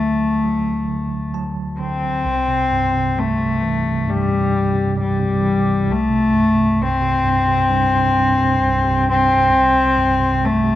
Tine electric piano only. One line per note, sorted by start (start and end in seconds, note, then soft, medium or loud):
0.00 2.20 D2 medium
0.00 0.88 D3 soft
0.00 0.42 F#3 soft
0.44 1.33 F#3 soft
0.88 1.79 D3 soft
1.34 2.22 F#3 soft
1.34 2.21 A5 medium
1.80 2.24 D3 soft
2.25 5.84 C2 medium
2.48 2.92 C3 soft
2.71 4.05 G2 soft
2.93 3.38 C3 soft
3.16 4.93 G3 soft
3.39 3.82 C3 soft
3.61 5.39 E3 soft
3.83 4.28 C3 soft
4.06 4.49 G2 medium
4.29 4.72 C3 soft
4.50 5.83 G2 soft
4.73 5.18 C3 soft
4.96 5.85 G3 soft
5.19 5.63 C3 medium
5.41 5.86 E3 soft
5.64 5.87 C3 soft
5.87 6.77 C2 medium
6.10 6.54 C3 soft
6.33 7.23 G2 soft
6.55 7.00 C3 soft
6.78 8.56 C2 soft
7.01 7.45 C3 soft
7.24 7.68 G2 soft
7.46 7.91 C3 soft
7.69 8.15 G2 medium
7.92 8.37 C3 soft
8.16 9.04 G2 soft
8.38 8.81 C3 soft
8.60 9.48 C2 medium
8.83 9.27 C3 medium
9.06 9.50 G2 soft
9.28 9.51 C3 soft
9.51 10.75 C2 medium
9.74 10.18 C3 soft
9.96 10.75 G2 soft
10.19 10.62 C3 soft
10.41 10.75 G3 medium
10.63 10.75 C3 soft